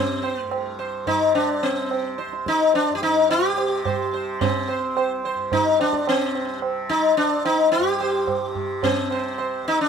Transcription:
Already playing: tanpura C2 G2 C3, sitar C4
0.22 sitar C5, tabla na
0.43 tanpura G2
0.47 sitar A3
0.51 tabla na
0.79 sitar C5, tabla na
1.04 tanpura C3, sitar D#4, tabla tin, tabla ge
1.35 sitar D4, tabla na
1.63 sitar C4, tabla na
1.67 tanpura C3
1.91 tabla na
2.18 sitar C5, tabla te
2.27 tanpura C2
2.33 tabla te
2.46 sitar D#4, tabla ke
2.60 tabla te
2.74 sitar D4, tabla tin
2.90 tanpura G2
2.95 sitar G4
3.02 sitar D#4, tabla na
3.30 sitar G4, tabla na
3.51 tanpura C3
3.58 tabla na
3.85 sitar C5, tabla na, tabla ge
4.13 tanpura C3, sitar C5, tabla te
4.41 sitar C4, tabla tin, tabla ge
4.68 sitar C5, tabla na
4.74 tanpura C2
4.97 sitar C5, tabla na
5.24 sitar C5, tabla na
5.34 tanpura G2
5.52 sitar D#4, tabla tin, tabla ge
5.80 sitar D4, tabla na
5.93 tanpura C3, tabla ke
6.07 sitar C4, tabla na
6.35 tabla na
6.57 tanpura C3
6.62 tabla na
6.89 sitar D#4, tabla ke
7.17 tanpura C2, sitar D4, tabla tin
7.45 sitar D#4, tabla na
7.72 sitar G4, tabla na
7.78 tanpura G2
8.00 sitar C5, tabla na
8.27 tabla na, tabla ge
8.39 tanpura C3
8.55 tabla ge
8.83 sitar C4, tabla tin, tabla ge
9.00 tanpura C3
9.11 sitar C5, tabla na
9.38 sitar C5, tabla na
9.61 tanpura C2
9.65 sitar D#4, tabla na
9.81 sitar D4

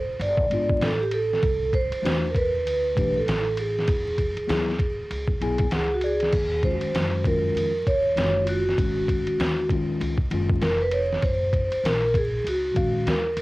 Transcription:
Already playing: upright bass F1, vibraphone C5
0.19 upright bass G1, vibraphone D5, ride
0.37 kick
0.50 upright bass G#1, tine electric piano G#3 B3 D4 F4, ride
0.69 kick
0.81 upright bass A1, vibraphone A4, snare, hi-hat pedal, ride
1.01 vibraphone G4
1.11 vibraphone A4, ride
1.33 snare
1.43 upright bass C2, kick, ride
1.73 vibraphone C5, kick, ride
1.91 muted upright bass stroke, ride
2.02 upright bass E2, tine electric piano E3 A3 D4 F#4, hi-hat pedal, ride
2.06 snare
2.31 vibraphone A#4, kick
2.36 vibraphone B4, ride
2.65 upright bass D2, ride
2.95 upright bass B1, tine electric piano E3 A3 D4 G4, kick, ride
3.18 vibraphone A4
3.26 upright bass A1, snare, hi-hat pedal, ride
3.57 vibraphone G#4, ride
3.79 snare
3.88 upright bass E2, kick, ride
4.18 kick, ride
4.36 muted upright bass stroke, ride
4.47 upright bass D2, tine electric piano F#3 B3 E4 G#4, snare, hi-hat pedal, ride
4.68 snare
4.79 kick, ride
5.10 upright bass C#2, ride
5.28 kick
5.41 upright bass B1, tine electric piano F#3 B3 E4 G#4 G#5, ride
5.58 kick, ride
5.71 upright bass C#2, vibraphone G#4, tine electric piano F#5, snare, hi-hat pedal, ride
5.94 vibraphone F#4
6.01 vibraphone G#4, tine electric piano D5, ride
6.20 snare, ride
6.32 upright bass D#2, kick, crash, ride
6.63 tine electric piano D#3 G#3 C#4 F4, vibraphone C5, kick, ride
6.73 tine electric piano F#4
6.81 muted upright bass stroke, ride
6.94 upright bass F#2, snare, hi-hat pedal, ride
7.24 tine electric piano D#3 G#3 C#4 F4, vibraphone A#4, kick, ride
7.55 upright bass F2, ride
7.86 upright bass D#2, vibraphone C#5, kick, ride
8.15 upright bass F#1, tine electric piano D#3 G#3 C#4 F4, snare, hi-hat pedal, ride
8.25 tine electric piano F#4
8.44 vibraphone F4, ride
8.49 vibraphone F#4
8.69 snare
8.77 upright bass G#1, tine electric piano D#3 G#3 C#4 F#4, kick, ride
9.08 kick, ride
9.27 muted upright bass stroke, ride
9.39 upright bass D#2, snare, hi-hat pedal, ride
9.69 tine electric piano D#3 G#3 C#4 F4, kick, ride
10.00 upright bass C#2, ride
10.18 kick
10.31 upright bass F#1, tine electric piano D#3 G#3 C#4 F4, ride
10.50 kick
10.62 upright bass F1, vibraphone A#4, snare, hi-hat pedal, ride
10.82 vibraphone B4
10.92 vibraphone C#5, ride
11.13 snare
11.23 upright bass F#1, vibraphone C5, kick, ride
11.53 kick, ride
11.72 muted upright bass stroke, ride
11.84 upright bass A#1, vibraphone A#4, snare, hi-hat pedal, ride
12.14 vibraphone G#4, kick, ride
12.44 upright bass C#2, vibraphone F#4, ride
12.74 upright bass A#1, tine electric piano D#3 G#3 C#4 F5, kick, ride
13.06 upright bass D#2, vibraphone A#4, snare, hi-hat pedal, ride
13.37 upright bass C#2, ride

